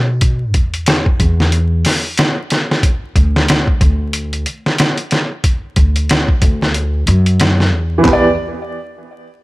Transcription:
0.00 0.55 B2 medium
0.21 kick loud
0.21 closed hi-hat medium
0.54 1.18 E2 medium
0.54 kick medium
0.54 closed hi-hat medium
0.74 closed hi-hat soft
0.86 snare loud
0.86 closed hi-hat medium
1.06 kick medium
1.20 1.83 E2 medium
1.20 kick loud
1.20 closed hi-hat medium
1.40 snare soft
1.52 closed hi-hat medium
1.85 snare soft
1.85 open hi-hat medium
2.17 snare loud
2.17 closed hi-hat medium
2.50 snare soft
2.50 closed hi-hat medium
2.71 snare soft
2.83 kick loud
2.83 closed hi-hat medium
3.16 3.78 D2 medium
3.16 kick medium
3.16 closed hi-hat medium
3.36 snare medium
3.48 snare loud
3.48 closed hi-hat medium
3.67 kick medium
3.81 4.44 D2 medium
3.81 kick loud
3.81 closed hi-hat medium
4.13 closed hi-hat medium
4.33 closed hi-hat soft
4.46 closed hi-hat medium
4.66 snare soft
4.78 snare loud
4.78 closed hi-hat medium
4.98 closed hi-hat soft
5.11 snare medium
5.11 closed hi-hat medium
5.44 kick loud
5.44 closed hi-hat medium
5.76 6.39 D2 medium
5.76 kick medium
5.76 closed hi-hat medium
5.96 closed hi-hat soft
6.09 snare loud
6.09 closed hi-hat medium
6.28 kick loud
6.42 7.05 D2 medium
6.42 kick loud
6.42 closed hi-hat medium
6.62 snare soft
6.74 closed hi-hat medium
7.07 7.73 F#2 loud
7.07 closed hi-hat medium
7.26 closed hi-hat soft
7.40 snare loud
7.40 closed hi-hat medium
7.60 snare soft
7.73 8.02 E2 medium
7.98 8.27 E3 medium
8.03 8.36 E2 medium
8.03 8.29 B3 medium
8.03 kick medium
8.03 clap medium
8.03 floor tom loud
8.08 8.32 G4 medium
8.13 8.35 D5 medium

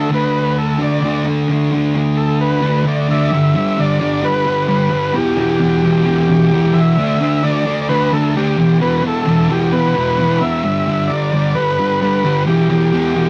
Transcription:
0.00 0.12 A3 medium
0.00 0.13 D4 medium
0.00 0.11 A4 loud
0.10 1.00 D3 medium
0.10 0.81 A3 medium
0.10 0.78 D4 medium
0.15 0.58 B4 medium
0.58 0.80 A4 medium
0.78 1.04 D4 medium
0.78 1.26 D5 loud
0.82 1.02 A3 medium
1.01 1.47 D3 medium
1.01 1.27 A3 medium
1.01 1.24 D4 loud
1.25 1.49 A3 medium
1.25 1.51 D4 medium
1.48 1.93 D3 medium
1.48 1.74 A3 medium
1.48 1.71 D4 loud
1.72 1.94 A3 medium
1.72 1.97 D4 medium
1.94 2.82 D3 medium
1.94 2.65 A3 medium
1.94 2.61 D4 medium
2.17 2.40 A4 medium
2.41 2.85 B4 medium
2.62 2.85 A3 medium
2.62 2.86 D4 medium
2.84 3.29 D3 medium
2.84 3.11 A3 loud
2.84 3.07 D4 medium
2.88 3.09 D5 medium
3.08 3.32 A3 medium
3.08 3.30 D4 medium
3.08 3.32 D5 loud
3.08 3.81 E5 medium
3.31 3.54 G2 loud
3.31 3.54 D3 medium
3.31 3.56 G3 medium
3.55 3.77 G2 medium
3.55 3.77 D3 medium
3.55 3.79 G3 medium
3.78 3.98 G2 medium
3.78 3.99 D3 loud
3.78 4.01 G3 loud
3.78 4.26 D5 loud
4.00 4.21 G2 medium
4.00 4.22 D3 medium
4.00 4.23 G3 loud
4.22 4.44 G2 loud
4.22 4.44 D3 medium
4.22 4.45 G3 loud
4.22 4.67 B4 loud
4.45 4.67 G2 medium
4.45 4.68 D3 medium
4.45 4.68 G3 medium
4.68 4.90 G2 medium
4.68 4.91 D3 medium
4.68 4.91 G3 loud
4.68 5.16 B4 medium
4.91 5.13 G2 medium
4.91 5.13 D3 loud
4.91 5.14 G3 loud
5.14 5.35 E2 loud
5.14 5.36 B2 loud
5.14 5.36 E3 loud
5.14 5.39 G4 loud
5.36 5.59 E2 medium
5.36 5.59 B2 medium
5.36 5.60 E3 medium
5.41 6.80 G4 loud
5.60 5.83 E2 medium
5.60 5.83 B2 loud
5.60 5.84 E3 loud
5.84 6.04 E2 medium
5.84 6.05 B2 medium
5.84 6.05 E3 medium
6.06 6.27 E2 medium
6.06 6.28 B2 loud
6.06 6.29 E3 loud
6.28 6.51 E2 loud
6.28 6.52 B2 medium
6.28 6.53 E3 loud
6.52 6.72 E2 medium
6.52 6.73 B2 medium
6.52 6.74 E3 loud
6.74 6.96 E2 loud
6.74 6.96 B2 medium
6.74 6.96 E3 loud
6.74 7.45 E5 loud
6.97 7.19 D3 medium
6.97 7.20 A3 loud
6.97 7.21 D4 loud
7.20 7.42 D3 medium
7.20 7.42 A3 medium
7.20 7.43 D4 medium
7.43 7.64 D3 medium
7.43 7.65 A3 loud
7.43 7.66 D4 loud
7.43 7.81 D5 loud
7.66 7.88 D3 medium
7.66 7.88 A3 medium
7.66 7.89 D4 loud
7.82 7.88 D5 medium
7.89 8.11 D3 medium
7.89 8.11 A3 loud
7.89 8.12 D4 loud
7.89 8.13 B4 loud
8.12 8.33 D3 medium
8.12 8.34 A3 medium
8.12 8.36 D4 loud
8.12 8.29 A4 loud
8.30 8.36 A4 medium
8.35 8.56 D3 medium
8.35 8.57 A3 medium
8.35 8.57 D4 loud
8.35 8.78 G4 medium
8.57 8.79 E2 loud
8.57 8.80 B2 loud
8.57 8.81 E3 loud
8.80 9.01 E2 medium
8.80 9.02 B2 loud
8.80 9.02 E3 loud
8.80 8.96 B4 loud
8.98 9.04 B4 medium
9.02 9.24 E2 medium
9.02 9.25 B2 medium
9.02 9.26 E3 loud
9.07 9.52 A4 loud
9.26 9.48 E2 medium
9.26 9.48 B2 medium
9.26 9.49 E3 loud
9.49 9.71 E2 medium
9.49 9.72 B2 medium
9.49 9.73 E3 medium
9.49 9.74 G4 medium
9.72 9.94 E2 loud
9.72 9.95 B2 loud
9.72 9.96 E3 loud
9.72 10.43 B4 loud
9.95 10.17 E2 medium
9.95 10.17 B2 loud
9.95 10.18 E3 medium
10.18 10.39 E2 medium
10.18 10.41 B2 medium
10.18 10.41 E3 loud
10.40 10.62 E2 medium
10.40 10.63 B2 medium
10.40 10.63 E3 loud
10.40 11.12 E5 loud
10.63 10.86 G2 loud
10.63 10.87 D3 loud
10.63 10.88 G3 loud
10.87 11.09 G2 loud
10.87 11.10 D3 medium
10.87 11.11 G3 medium
11.07 11.31 G2 loud
11.07 11.32 D3 medium
11.07 11.33 G3 loud
11.07 11.56 D5 medium
11.32 11.53 G2 medium
11.32 11.54 D3 medium
11.32 11.55 G3 loud
11.55 11.77 G2 loud
11.55 11.78 D3 loud
11.55 11.79 G3 loud
11.55 12.00 B4 loud
11.78 12.00 G2 loud
11.78 12.00 D3 loud
11.78 12.01 G3 loud
12.01 12.23 G2 medium
12.01 12.23 D3 medium
12.01 12.24 G3 loud
12.01 12.44 B4 medium
12.24 12.46 G2 medium
12.24 12.46 D3 medium
12.24 12.46 G3 loud
12.46 12.68 E2 loud
12.46 12.68 B2 loud
12.46 12.69 E3 loud
12.46 12.68 G4 loud
12.69 12.91 E2 medium
12.69 12.92 B2 medium
12.69 12.93 E3 loud
12.69 13.29 G4 medium
12.93 13.14 E2 loud
12.93 13.15 B2 loud
12.93 13.16 E3 loud
13.16 13.29 E2 medium
13.16 13.29 B2 loud
13.16 13.29 E3 medium

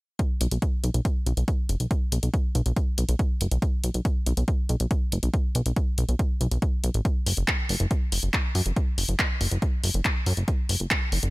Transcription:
0.19 kick loud
0.19 closed hi-hat medium
0.41 0.47 B1 medium
0.41 closed hi-hat medium
0.51 0.58 B1 medium
0.51 closed hi-hat medium
0.62 kick loud
0.62 closed hi-hat medium
0.84 0.90 B1 medium
0.84 closed hi-hat medium
0.94 1.01 B1 medium
0.94 closed hi-hat medium
1.05 kick loud
1.05 closed hi-hat medium
1.26 1.33 B1 medium
1.26 closed hi-hat medium
1.37 1.44 B1 medium
1.37 closed hi-hat medium
1.48 kick loud
1.48 closed hi-hat medium
1.69 1.76 F#1 medium
1.69 closed hi-hat medium
1.80 1.87 B1 medium
1.80 closed hi-hat medium
1.91 kick loud
1.91 closed hi-hat medium
2.12 2.19 B1 medium
2.12 closed hi-hat medium
2.23 2.30 B1 medium
2.23 closed hi-hat medium
2.34 kick loud
2.34 closed hi-hat medium
2.55 2.62 B1 medium
2.55 closed hi-hat medium
2.66 2.72 B1 medium
2.66 closed hi-hat medium
2.77 kick loud
2.77 closed hi-hat medium
2.98 3.05 B1 medium
2.98 closed hi-hat medium
3.09 3.15 B1 medium
3.09 closed hi-hat medium
3.19 kick loud
3.19 closed hi-hat medium
3.41 3.47 F#1 medium
3.41 closed hi-hat medium
3.51 3.58 B1 medium
3.51 closed hi-hat medium
3.62 kick loud
3.62 closed hi-hat medium
3.84 3.90 B1 medium
3.84 closed hi-hat medium
3.94 4.01 B1 medium
3.94 closed hi-hat medium
4.05 kick loud
4.05 closed hi-hat medium
4.26 4.33 B1 medium
4.26 closed hi-hat medium
4.37 4.44 B1 medium
4.37 closed hi-hat medium
4.48 kick loud
4.48 closed hi-hat medium
4.69 4.76 B1 medium
4.69 closed hi-hat medium
4.80 4.87 B1 medium
4.80 closed hi-hat medium
4.91 kick loud
4.91 closed hi-hat medium
5.12 5.19 F#1 medium
5.12 closed hi-hat medium
5.23 5.30 B1 medium
5.23 closed hi-hat medium
5.34 kick loud
5.34 closed hi-hat medium
5.55 5.62 B1 medium
5.55 closed hi-hat medium
5.66 5.72 B1 medium
5.66 closed hi-hat medium
5.76 kick loud
5.76 closed hi-hat medium
5.98 6.05 B1 medium
5.98 closed hi-hat medium
6.09 6.15 B1 medium
6.09 closed hi-hat medium
6.19 kick loud
6.19 closed hi-hat medium
6.41 6.47 B1 medium
6.41 closed hi-hat medium
6.51 6.58 B1 medium
6.51 closed hi-hat medium
6.62 kick loud
6.62 closed hi-hat medium
6.84 6.90 B1 medium
6.84 closed hi-hat medium
6.94 7.01 A1 medium
6.94 closed hi-hat medium
7.05 kick loud
7.05 closed hi-hat medium
7.26 7.33 F#1 medium
7.26 open hi-hat loud
7.37 7.44 F#1 medium
7.37 closed hi-hat medium
7.48 kick loud
7.48 clap loud
7.48 closed hi-hat medium
7.69 7.76 F#1 medium
7.69 open hi-hat medium
7.80 7.87 F#1 medium
7.80 closed hi-hat medium
7.91 kick loud
7.91 closed hi-hat medium
8.12 8.19 F#1 medium
8.12 open hi-hat loud
8.23 8.30 F#1 medium
8.23 closed hi-hat medium
8.34 kick loud
8.34 clap loud
8.34 closed hi-hat medium
8.55 8.62 F#2 medium
8.55 open hi-hat medium
8.66 8.72 F#1 medium
8.66 closed hi-hat medium
8.76 kick loud
8.76 closed hi-hat medium
8.98 9.05 F#1 medium
8.98 open hi-hat medium
9.09 9.15 F#1 medium
9.09 closed hi-hat medium
9.19 kick loud
9.19 clap loud
9.19 closed hi-hat medium
9.41 9.47 F#1 medium
9.41 open hi-hat medium
9.51 9.58 F#1 medium
9.51 closed hi-hat medium
9.62 kick loud
9.62 closed hi-hat medium
9.84 9.90 F#1 medium
9.84 open hi-hat loud
9.94 10.01 F#1 medium
9.94 closed hi-hat medium
10.05 kick loud
10.05 clap loud
10.05 closed hi-hat medium
10.26 10.33 F#2 medium
10.26 open hi-hat medium
10.37 10.44 F#1 medium
10.37 closed hi-hat medium
10.48 kick loud
10.48 closed hi-hat medium
10.69 10.76 F#1 medium
10.69 open hi-hat loud
10.80 10.87 F#1 medium
10.80 closed hi-hat medium
10.91 kick loud
10.91 clap loud
10.91 closed hi-hat medium
11.12 11.19 F#1 medium
11.12 open hi-hat medium
11.23 11.30 F#1 medium
11.23 closed hi-hat medium

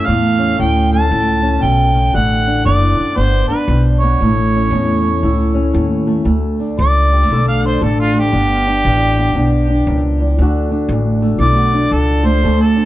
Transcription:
0.00 1.09 A4 medium
0.06 0.58 E2 medium
0.06 0.57 A2 medium
0.06 0.91 A3 medium
0.06 0.58 F5 loud
0.39 1.41 C#4 medium
0.58 1.09 D2 medium
0.58 1.08 A2 medium
0.58 0.90 G5 medium
0.92 2.12 A3 medium
0.92 1.65 A5 loud
1.09 1.61 C#2 medium
1.09 1.59 A2 medium
1.09 2.11 A4 medium
1.42 2.11 C#4 medium
1.59 2.13 B1 medium
1.59 1.93 B2 medium
1.59 2.16 G5 medium
1.94 2.14 C#3 medium
2.13 2.65 A1 medium
2.13 2.64 D2 medium
2.13 3.15 A3 medium
2.13 2.65 F#5 loud
2.47 3.16 D4 medium
2.64 2.96 F#1 medium
2.64 2.97 E2 medium
2.64 3.18 D5 medium
2.97 3.15 F#2 medium
2.97 muted upright bass stroke soft
3.16 3.48 G1 medium
3.16 3.68 G2 medium
3.16 4.01 B3 medium
3.16 3.47 C5 medium
3.48 4.19 D4 medium
3.48 3.84 B4 medium
3.48 muted upright bass stroke soft
3.68 4.19 B1 medium
3.68 4.19 G2 medium
3.99 5.71 C#5 medium
4.03 4.20 B3 medium
4.20 4.70 A1 medium
4.20 4.71 A2 medium
4.20 5.01 A3 medium
4.56 5.53 C#4 medium
4.71 5.22 E2 medium
4.71 5.21 A2 medium
5.02 6.06 A3 medium
5.22 5.74 C#2 medium
5.22 5.72 A2 medium
5.22 6.28 E4 medium
5.55 6.24 C#4 medium
5.73 6.25 D#2 medium
5.73 6.26 A2 medium
6.07 6.24 A3 medium
6.24 6.78 D2 medium
6.24 6.77 D2 medium
6.24 7.10 A3 medium
6.60 7.65 D4 medium
6.79 7.29 C#2 medium
6.79 7.46 D5 loud
7.12 7.23 G3 medium
7.23 8.13 A3 soft
7.30 7.80 B1 medium
7.30 7.81 D2 medium
7.30 8.32 A4 medium
7.48 7.65 F5 medium
7.65 8.67 D4 medium
7.65 7.84 C5 medium
7.82 8.32 A1 medium
7.82 8.32 D2 medium
7.82 7.99 A4 medium
8.00 8.21 F4 medium
8.14 8.31 A3 medium
8.19 9.68 G4 loud
8.32 8.83 G1 medium
8.32 8.84 G2 medium
8.32 9.17 B3 medium
8.67 9.36 D4 medium
8.85 9.34 A1 loud
8.85 9.35 G2 medium
9.18 10.38 B3 medium
9.35 9.86 B1 medium
9.35 9.87 G2 medium
9.35 9.69 D4 medium
9.70 10.40 D4 medium
9.87 10.37 C#2 medium
9.87 10.19 F#2 medium
10.20 10.38 E2 medium
10.38 10.88 D2 medium
10.38 10.91 D2 medium
10.38 11.22 A3 medium
10.38 10.71 D4 medium
10.38 11.41 F#4 medium
10.71 11.73 D4 medium
10.89 11.38 A1 loud
10.89 11.40 D2 medium
11.22 12.23 A3 medium
11.39 11.90 B1 medium
11.39 11.93 D2 medium
11.39 11.56 E4 medium
11.39 11.94 D5 loud
11.56 12.43 F#4 medium
11.74 12.42 D4 medium
11.91 12.42 C#2 medium
11.91 12.28 A4 medium
12.23 12.44 A3 medium
12.23 12.62 C5 medium
12.44 12.85 D2 medium
12.44 12.85 A3 medium
12.61 12.85 A4 medium
12.76 12.85 D4 medium

